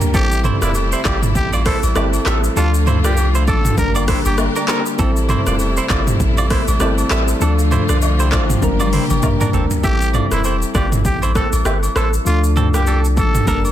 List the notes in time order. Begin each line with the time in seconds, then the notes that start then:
Already playing: D3 G3 A#3 D4 G4 A#4
0.01 floor tom, shaker
0.13 A1 C3 G3 A3 C4 E4 G4 A4, kick, high agogo, shaker
0.32 shaker
0.44 E4 C5, mid tom, high agogo, shaker
0.62 E1 E4 F4 D5, cross-stick, shaker
0.74 high agogo, shaker
0.92 E4 C5, shaker
1.05 G1 F4 G4 D5, kick, cross-stick, clap, high agogo, shaker
1.23 mid tom, shaker
1.35 A1 G4, kick, shaker
1.53 F4 D5, high agogo, shaker
1.66 E4 A4 C5, kick, cross-stick, open hi-hat, shaker
1.83 A1, high agogo, shaker
1.95 G1 G3 C4 E4 G4 A4 D5, cross-stick, low woodblock, shaker
2.13 high agogo, shaker
2.25 A1 G3 C4 E4 G4 A4 E5, cross-stick, clap, shaker
2.44 shaker
2.55 D2 D3 F3 A3 D4 F4 G4 A4, high agogo, shaker
2.64 A4
2.74 shaker
2.86 E4 C5, mid tom, high agogo, shaker
3.04 C2 F4 G4 D5, cross-stick, shaker
3.17 high agogo, shaker
3.35 E4 C5, shaker
3.48 A1 F4 A4 D5, kick, high agogo, shaker
3.65 mid tom, shaker
3.77 G1 G3 A#3 D4 G4 A4 A#4, kick, shaker
3.86 A#4
3.95 F4 D5, high agogo, shaker
4.08 E4 C5, kick, cross-stick, open hi-hat, shaker
4.25 G1 G4, high agogo, shaker
4.37 G3 A#3 D4 A#4, cross-stick, low woodblock, shaker
4.56 D4 A#4, high agogo, shaker
4.68 G3 A#3 C4 D4 A4 A#4, cross-stick, clap, shaker
4.86 shaker
4.98 A1 C3 G3 A3 C4 E4 A4, kick, high agogo, shaker
5.16 shaker
5.29 E4 C5, mid tom, high agogo, shaker
5.47 E1 F4 D5, cross-stick, shaker
5.59 high agogo, shaker
5.77 E4 C5, shaker
5.90 G1 F4 D5, kick, cross-stick, clap, high agogo, shaker
6.07 mid tom, shaker
6.20 A1, kick, shaker
6.37 F4 D5, high agogo, shaker
6.50 E4 C5, kick, cross-stick, open hi-hat, shaker
6.68 A1, high agogo, shaker
6.79 G1 G3 C4 E4 G4 A4 D5, cross-stick, low woodblock, shaker
6.98 high agogo, shaker
7.10 A1 G3 C4 E4 G4 A4 E5, cross-stick, clap, shaker
7.28 shaker
7.40 D2 D3 F3 A3 D4 F4 A4, high agogo, shaker
7.59 shaker
7.71 E4 C5, mid tom, high agogo, shaker
7.89 C2 F4 D5, cross-stick, shaker
8.02 A4 D5, high agogo, low woodblock, shaker
8.19 E4 G4 C5, shaker
8.32 A1 E4 F4 A4 D5, kick, cross-stick, clap, high agogo, shaker
8.50 C4 F4, mid tom, shaker
8.61 G1 G3 A#3 D4 G4 A#4, kick, high tom, shaker
8.80 F4 D5, high tom, high agogo, shaker
8.93 E4 C5, open hi-hat, mid tom, shaker
9.10 G1, mid tom, high agogo, shaker
9.22 G2 G3 A#3 D4 A#4, kick, mid tom, low woodblock, shaker
9.40 D4 A#4, mid tom, high agogo, shaker
9.52 G1 G3 A#3 C4 D4 A4 A#4, floor tom, shaker
9.71 floor tom, shaker
9.82 A1 G3 C4 E4 G4 A4 E5, kick, high agogo, shaker
10.01 shaker
10.13 G3 C4 E4 F4 A4 D5, mid tom, high agogo, shaker
10.32 E1 E4 C5, cross-stick, shaker
10.44 E4 C5, high agogo, shaker
10.62 shaker
10.75 G1 F4 G4 D5, kick, cross-stick, high agogo, shaker
10.92 mid tom, shaker
11.05 A1 G4, kick, shaker
11.22 E4 C5, high agogo, shaker
11.35 C4 A4, kick, cross-stick, shaker
11.53 A1, high agogo, shaker
11.65 G1 C4 G4, cross-stick, low woodblock, shaker
11.83 high agogo, shaker
11.96 A1 E4 A4 C5, cross-stick, shaker
12.13 shaker
12.25 D2 F3 A3 D4 F4 A4, high agogo, shaker
12.44 shaker
12.55 F3 A3 C4 D4 A4, mid tom, high agogo, shaker
12.74 C2 A#3 G4, cross-stick, shaker
12.87 D4 A4, high agogo, shaker
13.05 shaker
13.17 A1 A4, kick, high agogo, shaker
13.35 mid tom, shaker
13.46 G1 G3 A#3 D4 A4 A#4, kick, shaker
13.55 A#4
13.65 high agogo, shaker